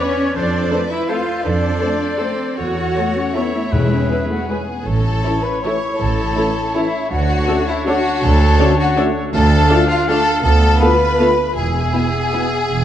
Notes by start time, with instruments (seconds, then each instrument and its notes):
Already playing: clarinet B4, violin section C#5, oboe D5
0.00 french horn section B3 D4, cello section C#4, viola section B4 D5, flute C#5, violin section C#5
0.35 double bass section F2, cello section D4, clarinet A4, violin section C5 D5, oboe C5, flute D5
0.71 french horn section A3 C4, viola section A4 C5, violin section B4
0.91 cello section E4, violin section E5, flute E5
1.08 french horn section A3 C4, cello section F4, viola section A4 C5, clarinet A4, oboe C5, flute F5, violin section F5
1.44 double bass section F2, cello section D4, clarinet A4, violin section A4 D5, oboe C5, flute D5
1.79 french horn section A3 C4, viola section A4 C5, violin section D5
2.18 french horn section A3 C4, cello section C4, viola section A4 C5, clarinet A4, violin section C5, flute C5, oboe C5
2.57 double bass section E2, cello section F#4, clarinet A4, oboe C#5, violin section C#5 F#5, flute F#5
2.96 french horn section A3, viola section A4 C#5
3.17 french horn section C#4
3.34 french horn section B3, cello section E4, clarinet A4, viola section A4 C#5, oboe C#5, flute E5, violin section E5
3.56 french horn section A3
3.72 timpani E2, double bass section E2, french horn section G#3, clarinet G#4, oboe B4
3.91 french horn section C#4
4.09 french horn section B3, viola section G#4 B4
4.29 french horn section A3, violin section F#4, flute F#5
4.47 french horn section G#3, violin section G#4, viola section G#4 B4, flute G#5
4.68 french horn section B3
4.86 double bass section A1, cello section A2, clarinet E4, violin section A4, oboe C#5, flute A5
5.23 trombone section E3 A3, french horn section C#4 E4, viola section E4 A4, violin section C#5
5.43 violin section B4, flute B5
5.62 trombone section E3 A3, french horn section C#4 E4, viola section E4 A4, violin section C#5, flute C#6
5.99 double bass section A1, cello section A2, violin section A4, flute A5
6.35 trombone section E3 A3, french horn section C#4 E4, viola section E4 A4, violin section C#5
6.73 trombone section E3 A3, french horn section C#4 E4, violin section E4 C#5, viola section E4 A4, flute E5
7.10 double bass section D2, cello section D2, clarinet D4, violin section F#4, oboe C#5, flute F#5
7.46 trombone section D3 A3, french horn section C#4 F#4, viola section D4 A4, violin section C#5
7.68 violin section E4, flute E5
7.84 trombone section D3 A3, french horn section C#4 F#4, viola section D4 A4, violin section F#4 C#5, flute F#5
8.21 cello section D2, double bass section D2, violin section A4, flute A5
8.58 trombone section D3 A3, french horn section C#4 F#4, viola section D4 A4, violin section C#5
8.78 violin section F#4, flute F#5
8.96 trombone section D3 A3, french horn section C#4 F#4, viola section D4 A4, violin section C#5
9.33 cello section D2, double bass section D2, clarinet D4, violin section A4, oboe F5, flute A5
9.68 trombone section D3 A3, viola section D4 A4, french horn section D4 F4, violin section F5
9.88 violin section F4, flute F5
10.08 trombone section D3 A3, viola section D4 A4, french horn section D4 F4, violin section A4 F5, flute A5
10.42 double bass section D2, cello section D2, clarinet B3, violin section A4, flute A5
10.80 trombone section D3 A3, viola section B3 A4, french horn section B3 F4, violin section B4 F5, flute B5
11.17 trombone section D3 A3, viola section B3 A4, french horn section B3 F4, violin section F5
11.55 double bass section E1, cello section E2, clarinet B3, violin section G#4, oboe E5, flute G#5
11.93 trombone section B2 B3, viola section B3 E4, french horn section B3 E4, violin section E5
12.31 trombone section B2 B3, french horn section B3 E4, viola section B3 E4, violin section E5
12.69 double bass section E1, cello section E2